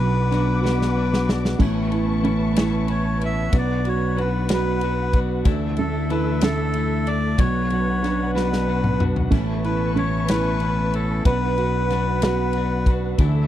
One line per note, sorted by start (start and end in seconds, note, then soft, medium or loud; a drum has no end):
0.00 1.56 B1 medium
0.00 1.56 B2 medium
0.00 1.23 F#3 medium
0.00 0.32 B3 soft
0.00 0.32 D4 soft
0.00 0.31 F#4 medium
0.00 0.60 B4 loud
0.00 1.58 B4 medium
0.00 1.58 F#5 medium
0.00 1.58 D6 medium
0.00 ride soft
0.31 0.64 F#3 medium
0.31 0.64 B3 medium
0.31 1.56 D4 medium
0.31 0.63 D4 medium
0.31 0.63 F#4 medium
0.31 snare soft
0.31 ride soft
0.61 0.95 F#3 medium
0.61 0.96 B3 medium
0.61 0.96 D4 medium
0.61 1.56 F#4 soft
0.61 0.96 F#4 medium
0.61 1.31 B4 medium
0.66 0.97 B2 medium
0.66 snare medium
0.82 snare medium
0.96 1.28 F#3 medium
0.96 1.28 B3 soft
0.96 1.28 D4 medium
0.96 1.27 F#4 medium
1.14 snare medium
1.28 1.60 B3 soft
1.28 1.60 D4 soft
1.28 1.60 F#4 soft
1.28 snare loud
1.45 snare medium
1.59 3.48 A1 medium
1.59 1.92 A2 medium
1.59 1.92 E3 medium
1.59 2.23 A3 medium
1.59 1.93 B3 medium
1.59 1.92 C#4 loud
1.59 1.91 E4 medium
1.59 3.51 B4 medium
1.59 3.51 A5 medium
1.59 3.51 C#6 medium
1.59 kick loud
1.59 crash medium
1.92 2.23 B3 soft
1.92 2.24 C#4 soft
1.92 2.55 E4 medium
1.92 2.24 E4 medium
1.92 ride soft
2.23 2.56 E3 medium
2.23 3.49 A3 medium
2.23 2.56 B3 medium
2.23 2.56 C#4 medium
2.23 2.55 E4 medium
2.23 ride soft
2.56 2.90 A2 medium
2.56 2.87 E3 medium
2.56 2.87 B3 medium
2.56 2.88 C#4 medium
2.56 3.50 E4 soft
2.56 2.89 E4 medium
2.56 snare loud
2.56 ride medium
2.88 3.20 E3 medium
2.88 3.21 B3 medium
2.88 3.21 C#4 soft
2.88 3.20 E4 medium
2.88 3.23 C#5 medium
2.88 ride soft
3.21 3.53 B3 soft
3.21 3.53 C#4 soft
3.21 3.53 E4 soft
3.21 ride soft
3.25 3.56 E5 loud
3.53 5.42 B1 medium
3.53 3.85 B2 medium
3.53 3.85 F#3 medium
3.53 4.16 B3 medium
3.53 3.86 B3 medium
3.53 3.85 D4 medium
3.53 3.83 F#4 medium
3.53 5.45 B4 medium
3.53 5.45 F#5 medium
3.53 kick loud
3.53 ride medium
3.58 3.88 D5 medium
3.84 4.16 B3 soft
3.84 4.17 D4 soft
3.84 4.17 F#4 medium
3.84 4.49 F#4 medium
3.84 ride soft
3.89 4.20 C#5 medium
4.16 4.49 F#3 medium
4.16 4.49 B3 medium
4.16 5.42 B3 medium
4.16 4.48 D4 medium
4.16 4.47 F#4 medium
4.16 4.52 B4 medium
4.16 ride soft
4.49 4.82 B2 medium
4.49 4.81 F#3 medium
4.49 4.82 B3 medium
4.49 4.81 D4 medium
4.49 4.81 F#4 medium
4.49 5.43 F#4 medium
4.49 snare loud
4.49 ride medium
4.54 5.20 B4 medium
4.81 5.14 F#3 medium
4.81 5.14 B3 medium
4.81 5.14 D4 medium
4.81 5.12 F#4 medium
4.81 ride soft
5.13 5.46 B3 soft
5.13 5.45 D4 soft
5.13 5.46 F#4 medium
5.13 kick medium
5.13 ride soft
5.45 7.34 D2 loud
5.45 5.78 D3 medium
5.45 7.35 D3 medium
5.45 5.78 E3 medium
5.45 5.78 A3 medium
5.45 5.78 D4 medium
5.45 5.77 E4 medium
5.45 7.36 A4 medium
5.45 7.37 E5 medium
5.45 kick medium
5.45 ride medium
5.77 6.41 A3 medium
5.77 6.10 A3 soft
5.77 6.10 D4 soft
5.77 6.10 E4 medium
5.77 6.11 A4 medium
5.77 ride soft
6.10 6.42 E3 medium
6.10 6.42 A3 medium
6.10 6.42 D4 medium
6.10 7.35 E4 medium
6.10 6.41 E4 medium
6.10 6.43 B4 medium
6.10 ride soft
6.41 6.75 D3 medium
6.41 6.73 E3 medium
6.41 7.36 A3 medium
6.41 6.74 A3 medium
6.41 6.75 D4 medium
6.41 6.74 E4 medium
6.41 7.08 A4 loud
6.41 snare loud
6.41 ride medium
6.74 7.06 E3 soft
6.74 7.07 A3 medium
6.74 7.06 D4 medium
6.74 7.05 E4 medium
6.74 ride soft
7.06 7.39 A3 soft
7.06 7.39 D4 soft
7.06 7.38 E4 soft
7.06 7.40 D5 loud
7.06 ride soft
7.36 9.28 B1 medium
7.36 9.28 B2 medium
7.36 7.71 B2 medium
7.36 7.71 F#3 medium
7.36 7.71 B3 medium
7.36 9.28 B4 medium
7.36 8.31 C#5 loud
7.36 9.28 F#5 medium
7.36 kick loud
7.36 ride medium
7.40 7.71 D4 medium
7.40 7.70 F#4 medium
7.70 8.95 F#3 soft
7.70 8.03 B3 soft
7.70 8.03 D4 medium
7.70 8.03 F#4 medium
7.70 ride soft
8.03 8.35 F#3 medium
8.03 8.35 B3 medium
8.03 9.28 D4 medium
8.03 8.35 D4 medium
8.03 8.34 F#4 medium
8.03 snare soft
8.03 ride soft
8.35 8.68 B2 medium
8.35 8.66 F#3 medium
8.35 8.67 B3 medium
8.35 8.68 D4 medium
8.35 9.28 F#4 soft
8.35 8.67 F#4 medium
8.35 9.04 B4 loud
8.35 snare medium
8.53 snare medium
8.68 9.00 F#3 soft
8.68 9.00 B3 soft
8.68 9.00 D4 medium
8.68 8.99 F#4 medium
8.84 mid tom medium
9.00 9.32 B3 soft
9.00 9.33 D4 soft
9.00 9.32 F#4 soft
9.00 mid tom loud
9.16 floor tom medium
9.30 11.21 A1 medium
9.30 9.64 A2 medium
9.30 9.64 E3 medium
9.30 9.94 A3 medium
9.30 9.65 B3 medium
9.30 9.64 C#4 medium
9.30 9.63 E4 medium
9.30 11.22 B4 medium
9.30 11.22 A5 medium
9.30 11.22 C#6 medium
9.30 kick loud
9.30 crash medium
9.64 9.97 B3 soft
9.64 9.97 C#4 soft
9.64 10.27 E4 soft
9.64 9.96 E4 medium
9.64 9.97 B4 medium
9.64 ride soft
9.96 10.29 E3 medium
9.96 11.21 A3 medium
9.96 10.29 B3 medium
9.96 10.29 C#4 medium
9.96 10.29 E4 medium
9.96 10.30 C#5 loud
9.96 ride soft
10.28 10.62 A2 medium
10.28 10.60 E3 medium
10.28 10.61 B3 medium
10.28 10.61 C#4 medium
10.28 11.22 E4 soft
10.28 10.61 E4 medium
10.28 10.95 B4 loud
10.28 snare loud
10.28 ride medium
10.60 10.93 E3 medium
10.60 10.94 B3 medium
10.60 10.94 C#4 medium
10.60 ride soft
10.64 10.92 E4 medium
10.93 11.25 B3 soft
10.93 11.26 C#4 soft
10.93 11.25 E4 soft
10.93 11.24 A4 medium
10.93 ride soft
11.25 13.14 B1 medium
11.25 11.57 B2 medium
11.25 11.58 F#3 medium
11.25 11.88 B3 medium
11.25 11.58 B3 medium
11.25 11.58 D4 medium
11.25 11.58 F#4 medium
11.25 13.16 B4 medium
11.25 12.23 B4 loud
11.25 13.16 F#5 medium
11.25 kick loud
11.25 ride medium
11.57 11.91 D4 soft
11.57 12.21 F#4 soft
11.57 11.90 F#4 medium
11.57 ride soft
11.62 11.90 B3 soft
11.90 12.22 F#3 medium
11.90 13.14 B3 medium
11.90 12.22 B3 medium
11.90 12.22 D4 medium
11.90 12.21 F#4 medium
11.90 snare soft
11.90 ride soft
12.22 12.55 B2 medium
12.22 12.54 F#3 medium
12.22 12.55 B3 medium
12.22 12.54 D4 medium
12.22 13.16 F#4 medium
12.22 12.54 F#4 medium
12.22 12.91 B4 medium
12.22 snare loud
12.22 ride medium
12.53 12.87 F#3 soft
12.53 12.87 B3 soft
12.53 12.87 D4 medium
12.53 ride soft
12.58 12.86 F#4 medium
12.86 13.20 B3 soft
12.86 13.19 D4 soft
12.86 13.19 F#4 medium
12.86 kick medium
12.86 ride soft
13.18 13.47 D2 medium
13.18 13.47 D3 medium
13.18 13.47 E3 loud
13.18 13.47 A3 medium
13.18 13.47 D4 medium
13.18 13.47 E4 medium
13.18 13.47 A4 medium
13.18 13.47 E5 medium
13.18 kick loud
13.18 ride medium